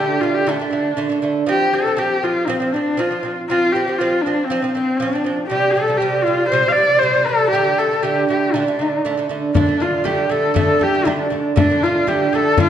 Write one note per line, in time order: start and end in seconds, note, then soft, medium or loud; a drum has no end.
0.00 0.17 D3 medium
0.00 0.18 A3 medium
0.00 0.22 G4 medium
0.21 0.42 D3 medium
0.21 0.43 A3 medium
0.21 0.36 F4 medium
0.35 0.51 G4 medium
0.47 0.57 D3 loud
0.47 0.58 A3 loud
0.47 1.24 D4 medium
0.59 0.69 D3 medium
0.59 0.71 A3 medium
0.71 0.92 D3 medium
0.71 0.93 A3 medium
0.97 1.08 D3 medium
0.97 1.08 A3 medium
1.10 1.20 D3 medium
1.10 1.21 A3 medium
1.22 1.43 D3 medium
1.22 1.44 A3 medium
1.46 1.68 F3 medium
1.46 1.69 C4 medium
1.46 1.75 G4 medium
1.73 1.83 F3 medium
1.73 1.84 C4 medium
1.73 2.00 A4 medium
1.86 1.95 F3 medium
1.86 1.97 C4 medium
1.97 2.18 F3 medium
1.97 2.19 C4 medium
1.97 2.25 G4 medium
2.23 2.44 F3 medium
2.23 2.44 C4 medium
2.23 2.48 F4 medium
2.47 2.58 F3 medium
2.47 2.75 C4 medium
2.47 2.59 C4 loud
2.60 2.71 F3 medium
2.60 2.72 C4 medium
2.73 2.94 F3 medium
2.73 2.95 C4 medium
2.73 3.01 D4 medium
2.97 3.09 F3 medium
2.97 3.09 C4 loud
2.97 3.38 F4 medium
3.11 3.21 F3 medium
3.11 3.22 C4 medium
3.23 3.44 F3 medium
3.23 3.45 C4 medium
3.50 3.70 F3 medium
3.50 3.71 C4 medium
3.50 3.74 F4 loud
3.72 3.85 F3 medium
3.72 3.86 C4 medium
3.72 4.00 G4 medium
3.88 3.98 F3 medium
3.88 3.98 C4 medium
3.99 4.21 F3 medium
3.99 4.21 C4 medium
3.99 4.23 F4 medium
4.21 4.48 D4 medium
4.26 4.46 F3 medium
4.26 4.46 C4 medium
4.46 4.71 C4 medium
4.50 4.61 F3 loud
4.50 4.61 C4 loud
4.62 4.73 F3 medium
4.62 4.74 C4 medium
4.72 4.96 F3 medium
4.72 4.99 C4 medium
4.77 4.97 C4 medium
4.97 5.11 F3 medium
4.97 5.37 D4 medium
5.02 5.12 C4 medium
5.13 5.23 F3 medium
5.13 5.24 C4 medium
5.24 5.45 F3 medium
5.24 5.46 C4 medium
5.47 5.71 C3 medium
5.47 5.72 G3 medium
5.47 5.74 G4 medium
5.72 5.86 C3 medium
5.72 5.99 A4 medium
5.77 5.87 G3 medium
5.88 5.99 C3 medium
5.88 5.99 G3 medium
5.97 6.21 C3 medium
5.97 6.25 G4 medium
6.02 6.22 G3 medium
6.23 6.47 C3 medium
6.23 6.48 F4 medium
6.28 6.48 G3 medium
6.49 6.62 C3 medium
6.49 6.70 C5 medium
6.53 6.63 G3 loud
6.65 6.75 C3 medium
6.65 6.76 G3 medium
6.65 6.74 F5 medium
6.72 7.00 D5 medium
6.77 6.97 C3 medium
6.77 6.98 G3 medium
6.99 7.13 C3 medium
6.99 7.28 C5 medium
7.03 7.13 G3 medium
7.15 7.25 C3 medium
7.15 7.26 G3 medium
7.26 7.48 C3 medium
7.26 7.49 G3 medium
7.26 7.50 A4 loud
7.50 7.73 D3 medium
7.50 7.80 G4 medium
7.55 7.74 A3 medium
7.78 7.88 D3 medium
7.78 7.89 A3 medium
7.78 8.05 A4 medium
7.91 8.01 D3 medium
7.91 8.02 A3 medium
8.03 8.24 D3 medium
8.03 8.24 A3 medium
8.03 8.29 G4 medium
8.29 8.49 D3 medium
8.29 8.50 A3 medium
8.29 8.56 G4 medium
8.54 8.64 D3 loud
8.54 8.65 A3 loud
8.54 9.30 D4 medium
8.67 8.77 D3 medium
8.67 8.78 A3 medium
8.79 9.00 D3 medium
8.79 9.01 A3 medium
9.05 9.15 D3 medium
9.05 9.15 A3 medium
9.17 9.28 D3 medium
9.17 9.28 A3 medium
9.29 9.50 D3 medium
9.29 9.50 A3 medium
9.54 9.65 D3 medium
9.54 9.66 A3 loud
9.54 9.83 D4 medium
9.54 frame drum medium
9.67 9.77 D3 medium
9.67 9.78 A3 medium
9.80 10.01 D3 medium
9.80 10.01 A3 medium
9.80 10.07 F4 medium
9.80 frame drum soft
10.04 10.25 D3 medium
10.04 10.26 A3 loud
10.04 10.33 G4 medium
10.04 frame drum medium
10.30 10.50 D3 medium
10.30 10.51 A3 medium
10.30 10.56 A4 medium
10.30 frame drum soft
10.54 10.75 D3 medium
10.54 10.76 A3 loud
10.54 10.85 A4 medium
10.54 frame drum medium
10.80 10.91 D3 medium
10.80 10.91 A3 medium
10.80 11.08 G4 medium
10.80 frame drum medium
10.94 11.04 D3 medium
10.94 11.05 A3 medium
11.05 11.26 D3 medium
11.05 11.27 A3 loud
11.05 11.45 D4 medium
11.05 frame drum medium
11.30 11.51 D3 medium
11.30 11.52 A3 medium
11.30 frame drum soft
11.56 11.67 D3 medium
11.56 11.67 A3 loud
11.56 11.85 D4 medium
11.56 frame drum medium
11.70 11.80 D3 medium
11.70 11.81 A3 medium
11.82 12.03 D3 medium
11.82 12.04 A3 medium
11.82 12.10 F4 medium
11.82 frame drum soft
12.07 12.28 D3 medium
12.07 12.28 A3 medium
12.07 12.37 G4 medium
12.07 frame drum medium
12.33 12.53 D3 medium
12.33 12.54 A3 medium
12.33 12.59 A4 medium
12.33 frame drum soft
12.57 12.69 D3 loud
12.57 12.69 A3 loud
12.57 12.69 F4 medium
12.57 frame drum medium